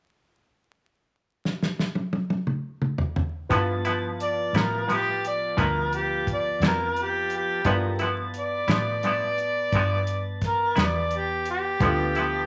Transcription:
1.45 snare medium
1.62 snare medium
1.79 snare medium
1.95 high tom medium
2.13 high tom medium
2.30 high tom medium
2.47 mid tom medium
2.82 mid tom medium
2.98 floor tom medium
3.16 floor tom medium
3.49 4.51 G2 medium
3.49 3.71 G2 medium
3.49 7.62 F3 medium
3.49 3.71 F3 medium
3.49 7.61 B3 soft
3.49 7.62 B3 medium
3.49 3.72 B3 medium
3.49 7.62 E4 soft
3.49 3.72 E4 medium
3.49 7.62 F4 soft
3.49 7.62 A5 medium
3.49 kick medium
3.49 closed hi-hat medium
3.85 4.07 F3 soft
3.85 4.07 B3 soft
3.85 4.06 E4 medium
3.85 closed hi-hat medium
4.20 4.55 D5 medium
4.20 closed hi-hat medium
4.53 5.54 A2 medium
4.53 4.76 B3 soft
4.53 4.75 E4 soft
4.53 4.89 A#4 medium
4.53 snare medium
4.53 closed hi-hat medium
4.58 4.77 F3 soft
4.87 5.09 G2 soft
4.87 5.10 F3 medium
4.87 5.10 B3 medium
4.87 closed hi-hat medium
4.92 5.11 E4 soft
4.92 5.24 G4 medium
5.24 5.59 D5 medium
5.24 closed hi-hat medium
5.57 6.59 D2 medium
5.57 5.78 G2 medium
5.57 5.79 F3 medium
5.57 5.79 B3 medium
5.57 5.79 E4 medium
5.57 5.92 A#4 medium
5.57 kick medium
5.57 closed hi-hat medium
5.93 6.27 G4 medium
5.93 closed hi-hat medium
6.27 kick medium
6.27 closed hi-hat medium
6.33 6.64 D5 medium
6.60 7.62 F2 medium
6.60 6.83 E4 soft
6.60 snare medium
6.60 closed hi-hat medium
6.64 6.84 F3 soft
6.64 6.84 B3 soft
6.64 7.04 A#4 medium
6.96 closed hi-hat soft
7.02 7.33 G4 medium
7.30 closed hi-hat medium
7.37 7.68 G4 medium
7.65 7.86 G2 medium
7.65 8.66 G2 medium
7.65 7.87 F3 medium
7.65 11.77 B3 soft
7.65 7.87 B3 medium
7.65 8.00 B3 medium
7.65 11.77 E4 soft
7.65 7.87 E4 medium
7.65 11.78 F4 soft
7.65 8.01 G4 soft
7.65 8.01 A4 medium
7.65 8.01 A#4 soft
7.65 11.78 D5 soft
7.65 kick medium
7.65 closed hi-hat medium
7.99 8.22 F3 soft
7.99 8.22 B3 soft
7.99 11.78 B3 medium
7.99 8.21 E4 medium
7.99 11.78 A5 medium
7.99 closed hi-hat soft
8.34 closed hi-hat medium
8.39 10.41 D5 medium
8.68 9.69 A2 medium
8.68 8.91 F3 soft
8.68 8.90 B3 soft
8.68 8.90 E4 soft
8.68 snare medium
8.68 closed hi-hat medium
9.03 9.25 G2 medium
9.03 9.25 F3 medium
9.03 9.26 B3 medium
9.03 closed hi-hat medium
9.07 9.26 E4 medium
9.38 closed hi-hat soft
9.72 10.74 G2 medium
9.72 9.95 G2 medium
9.72 9.95 F3 medium
9.72 9.96 B3 medium
9.72 9.96 E4 medium
9.72 kick medium
9.72 closed hi-hat medium
10.07 closed hi-hat medium
10.41 kick medium
10.41 snare soft
10.41 closed hi-hat medium
10.47 10.85 A#4 medium
10.76 11.78 E2 medium
10.76 10.99 F3 soft
10.76 10.98 B3 soft
10.76 10.97 E4 soft
10.76 snare loud
10.76 closed hi-hat medium
10.83 11.18 D5 medium
11.11 closed hi-hat medium
11.17 11.48 G4 medium
11.45 closed hi-hat medium
11.50 12.46 G4 medium
11.80 12.46 D2 medium
11.80 12.02 G2 medium
11.80 12.02 F3 medium
11.80 12.15 B3 medium
11.80 12.46 B3 soft
11.80 12.03 B3 medium
11.80 12.46 D4 soft
11.80 12.03 E4 medium
11.80 12.15 F4 medium
11.80 12.46 F4 soft
11.80 12.16 G4 medium
11.80 12.14 A4 soft
11.80 12.46 A4 medium
11.80 kick medium
11.80 closed hi-hat medium
12.15 12.46 B3 medium
12.15 12.38 B3 soft
12.15 12.37 E4 soft
12.15 12.46 A4 medium
12.15 closed hi-hat soft
12.19 12.38 F3 soft

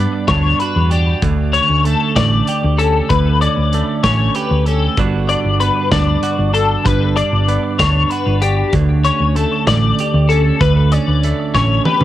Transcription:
0.00 1.19 G2 medium
0.00 1.19 B3 medium
0.00 0.31 D4 medium
0.00 0.28 D5 medium
0.28 0.52 D2 medium
0.28 0.91 D4 medium
0.28 0.59 C#5 medium
0.28 kick medium
0.28 snare loud
0.28 closed hi-hat medium
0.59 2.48 F#4 medium
0.59 0.90 B4 medium
0.59 closed hi-hat medium
0.76 1.12 E2 loud
0.90 1.55 D4 medium
0.90 1.22 G4 medium
0.90 closed hi-hat medium
1.22 3.09 D2 medium
1.22 1.58 D2 loud
1.22 kick medium
1.22 closed hi-hat medium
1.53 2.52 C#4 medium
1.53 1.84 C#5 medium
1.53 closed hi-hat medium
1.69 1.93 D2 medium
1.84 3.07 A3 medium
1.84 2.16 A4 medium
1.84 closed hi-hat medium
2.16 2.40 A1 medium
2.16 2.79 D5 medium
2.16 kick medium
2.16 snare loud
2.16 closed hi-hat medium
2.47 3.07 G4 medium
2.47 closed hi-hat medium
2.64 3.00 D2 loud
2.78 3.07 C#4 medium
2.78 3.10 A4 medium
2.78 closed hi-hat medium
3.09 4.97 D2 medium
3.09 3.46 D2 medium
3.09 3.41 B4 medium
3.09 kick loud
3.09 closed hi-hat medium
3.41 4.04 C#4 medium
3.41 4.03 D5 medium
3.41 closed hi-hat medium
3.57 3.81 D2 medium
3.73 4.95 A3 medium
3.73 closed hi-hat medium
4.04 4.28 A1 medium
4.04 4.66 C#4 medium
4.04 4.35 C#5 medium
4.04 kick medium
4.04 snare loud
4.04 closed hi-hat medium
4.35 4.94 G4 medium
4.35 4.66 B4 medium
4.35 closed hi-hat medium
4.51 4.87 D2 loud
4.66 4.95 C#4 medium
4.66 4.98 A4 medium
4.66 closed hi-hat medium
4.97 5.34 G1 loud
4.97 6.82 G2 medium
4.97 8.73 D3 medium
4.97 5.60 B3 medium
4.97 5.30 D4 medium
4.97 6.23 F#4 medium
4.97 kick loud
4.97 closed hi-hat medium
5.29 5.92 D4 medium
5.29 5.60 D5 medium
5.29 closed hi-hat medium
5.44 5.68 G1 medium
5.60 6.82 B3 medium
5.60 5.91 B4 medium
5.60 closed hi-hat medium
5.91 6.16 D2 medium
5.91 6.53 D4 medium
5.91 6.53 D5 medium
5.91 kick medium
5.91 snare loud
5.91 closed hi-hat medium
6.23 6.87 F#4 medium
6.23 closed hi-hat medium
6.38 6.74 G1 loud
6.54 7.17 D4 medium
6.54 6.85 A4 medium
6.54 closed hi-hat medium
6.84 7.22 G1 loud
6.84 8.69 G2 medium
6.84 7.16 B4 medium
6.84 kick medium
6.84 closed hi-hat medium
7.16 7.80 D4 medium
7.16 7.79 D5 medium
7.16 closed hi-hat medium
7.33 7.57 G1 medium
7.48 8.69 B3 medium
7.48 closed hi-hat medium
7.79 8.03 D2 medium
7.79 8.43 D4 medium
7.79 8.10 C#5 medium
7.79 kick medium
7.79 snare loud
7.79 closed hi-hat medium
8.10 10.00 F#4 medium
8.10 8.42 B4 medium
8.10 closed hi-hat medium
8.26 8.62 G1 loud
8.42 9.06 D4 medium
8.42 8.73 G4 medium
8.42 closed hi-hat medium
8.73 9.09 D2 loud
8.73 10.60 D2 medium
8.73 kick loud
8.73 closed hi-hat medium
9.04 10.03 C#4 medium
9.04 9.35 C#5 medium
9.04 closed hi-hat medium
9.20 9.44 D2 medium
9.35 11.24 A3 medium
9.35 9.67 A4 medium
9.35 closed hi-hat medium
9.67 9.91 A1 medium
9.67 10.30 D5 medium
9.67 kick medium
9.67 snare loud
9.67 closed hi-hat medium
9.99 10.58 G4 medium
9.99 closed hi-hat medium
10.14 10.50 D2 loud
10.29 10.58 C#4 medium
10.29 10.61 A4 medium
10.29 closed hi-hat medium
10.61 12.04 D2 medium
10.61 10.97 D2 loud
10.61 10.92 B4 medium
10.61 kick loud
10.61 closed hi-hat medium
10.92 11.53 C#4 medium
10.92 11.54 D5 medium
10.92 closed hi-hat medium
11.08 11.32 D2 medium
11.23 12.04 A3 medium
11.23 closed hi-hat medium
11.54 11.78 A1 medium
11.54 12.04 C#4 medium
11.54 11.85 C#5 medium
11.54 kick medium
11.54 snare medium
11.85 12.04 G4 medium
11.85 12.04 B4 medium
11.85 high tom medium
12.01 mid tom medium

